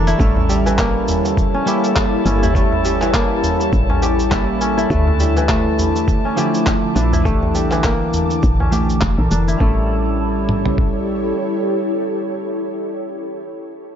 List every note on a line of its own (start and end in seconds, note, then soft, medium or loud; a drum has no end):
0.00 0.15 F1 loud
0.00 0.17 D3 medium
0.00 0.16 E3 medium
0.00 0.24 E3 medium
0.00 0.24 G3 medium
0.00 0.26 A#3 loud
0.00 1.60 D4 medium
0.00 0.73 G4 medium
0.00 0.16 A4 medium
0.00 0.17 A#4 medium
0.00 0.15 D5 medium
0.00 0.17 A5 medium
0.00 0.21 C#6 medium
0.07 1.64 E4 loud
0.07 closed hi-hat soft
0.07 shaker soft
0.17 1.10 A1 medium
0.17 1.63 G3 medium
0.17 0.84 A3 loud
0.17 1.64 C#4 medium
0.17 4.86 E4 medium
0.17 1.64 E4 medium
0.17 4.87 G4 medium
0.17 4.87 A4 medium
0.17 4.87 C#5 medium
0.17 9.62 A5 medium
0.17 kick loud
0.17 darbuka tek medium
0.17 shaker soft
0.37 darbuka tek medium
0.37 darbuka dum medium
0.49 2.83 G3 medium
0.49 darbuka ka medium
0.49 shaker medium
0.66 3.00 E3 medium
0.66 darbuka tek medium
0.66 shaker soft
0.78 2.61 A#3 loud
0.78 kick loud
0.78 clap loud
0.78 shaker soft
1.08 1.21 E1 medium
1.08 darbuka dum medium
1.08 shaker medium
1.25 darbuka ka medium
1.25 shaker soft
1.37 kick loud
1.37 shaker soft
1.54 2.25 C#4 medium
1.66 2.22 G3 medium
1.66 2.22 A#3 medium
1.66 2.23 C#4 medium
1.66 2.23 E4 medium
1.66 3.08 G4 medium
1.66 shaker medium
1.84 darbuka ka soft
1.84 shaker soft
1.96 kick loud
1.96 clap loud
1.96 shaker soft
2.25 3.45 G1 medium
2.25 2.51 G3 medium
2.25 2.52 A#3 medium
2.25 3.89 C#4 medium
2.25 2.52 C#4 medium
2.25 2.52 E4 medium
2.25 darbuka tek medium
2.25 shaker medium
2.43 4.00 E4 medium
2.43 darbuka ka medium
2.43 darbuka dum medium
2.43 shaker soft
2.54 4.28 G3 medium
2.54 3.20 A3 loud
2.54 4.29 C#4 medium
2.54 4.30 E4 medium
2.54 kick loud
2.54 darbuka tek medium
2.54 shaker soft
2.72 darbuka ka soft
2.72 darbuka tek medium
2.72 darbuka dum medium
2.85 4.95 G3 medium
2.85 darbuka ka medium
2.85 shaker medium
3.01 4.95 E3 medium
3.01 clap soft
3.01 darbuka tek medium
3.01 shaker soft
3.14 4.96 A#3 medium
3.14 kick loud
3.14 clap loud
3.14 shaker soft
3.43 3.57 E1 loud
3.43 darbuka dum medium
3.43 shaker medium
3.60 darbuka ka medium
3.60 shaker soft
3.73 4.86 A1 medium
3.73 kick loud
3.73 shaker soft
3.90 4.61 C#4 medium
3.90 darbuka tek medium
3.90 darbuka dum medium
4.02 5.44 G4 medium
4.02 darbuka tek medium
4.02 shaker medium
4.19 shaker soft
4.31 4.87 G3 medium
4.31 4.87 A#3 medium
4.31 4.87 C#4 medium
4.31 4.88 E4 loud
4.31 kick loud
4.31 clap medium
4.31 shaker soft
4.61 6.25 C#4 medium
4.61 shaker medium
4.78 6.34 E4 medium
4.78 shaker soft
4.90 5.80 D2 loud
4.90 9.57 D3 medium
4.90 6.34 A3 medium
4.90 5.49 A3 loud
4.90 7.23 A3 medium
4.90 6.35 D4 medium
4.90 7.23 E4 medium
4.90 6.36 E4 medium
4.90 7.23 D6 medium
4.90 kick loud
4.90 darbuka tek medium
4.90 shaker soft
5.07 darbuka tek medium
5.07 darbuka dum medium
5.20 7.30 G3 medium
5.20 darbuka ka medium
5.20 shaker medium
5.37 7.30 E3 medium
5.37 darbuka tek medium
5.37 shaker soft
5.49 7.25 A3 medium
5.49 kick loud
5.49 clap loud
5.49 shaker soft
5.79 5.92 A1 medium
5.79 darbuka dum medium
5.79 shaker medium
5.96 darbuka ka medium
5.96 shaker soft
6.08 kick loud
6.08 shaker soft
6.25 7.02 C#4 medium
6.36 6.93 D3 medium
6.36 6.93 F3 medium
6.36 6.93 A3 medium
6.36 6.94 E4 medium
6.36 7.79 G4 medium
6.36 shaker medium
6.54 darbuka ka soft
6.54 shaker soft
6.66 kick loud
6.66 clap medium
6.66 shaker soft
6.95 8.15 A#1 medium
6.95 7.22 F3 medium
6.95 7.22 A3 medium
6.95 8.66 D4 medium
6.95 7.22 D4 medium
6.95 7.23 E4 medium
6.95 darbuka tek medium
6.95 shaker medium
7.13 8.70 E4 medium
7.13 darbuka ka medium
7.13 darbuka dum medium
7.13 shaker soft
7.23 8.69 E3 medium
7.23 7.91 A3 loud
7.23 8.70 D4 medium
7.23 8.70 A4 medium
7.23 9.59 A5 medium
7.23 9.58 D6 medium
7.23 kick loud
7.23 darbuka tek medium
7.23 shaker soft
7.27 8.71 G4 medium
7.42 darbuka ka soft
7.42 darbuka tek medium
7.42 darbuka dum medium
7.54 9.66 G3 medium
7.54 darbuka ka medium
7.54 shaker medium
7.71 9.66 E3 medium
7.71 clap soft
7.71 darbuka tek medium
7.71 shaker soft
7.84 9.67 A#3 medium
7.84 kick medium
7.84 clap medium
7.84 shaker soft
8.13 8.27 F1 medium
8.13 darbuka dum medium
8.13 shaker medium
8.30 darbuka ka medium
8.30 shaker soft
8.43 9.01 A#1 medium
8.43 kick medium
8.43 shaker soft
8.60 9.37 C#4 medium
8.60 darbuka tek medium
8.60 darbuka dum medium
8.71 9.15 D3 medium
8.71 9.14 E3 medium
8.71 9.14 A3 medium
8.71 10.13 G4 medium
8.71 9.15 G4 medium
8.71 darbuka tek medium
8.71 shaker medium
8.90 shaker soft
9.01 9.15 F1 medium
9.01 kick loud
9.01 clap medium
9.01 shaker soft
9.18 9.28 A#1 medium
9.18 9.58 D3 medium
9.18 9.57 E3 medium
9.18 9.57 A4 medium
9.18 9.58 A#4 medium
9.31 9.55 F1 medium
9.31 10.99 D4 medium
9.31 shaker medium
9.48 11.05 E4 medium
9.48 shaker soft
9.57 11.33 A1 medium
9.57 13.40 G3 medium
9.57 11.61 A3 medium
9.57 12.72 E4 medium
9.57 12.72 G4 medium
9.57 12.72 A4 medium
9.57 12.72 C#5 medium
9.57 kick medium
9.61 13.42 C#4 medium
9.61 13.43 E4 medium
10.49 mid tom soft
10.65 floor tom medium
10.78 kick medium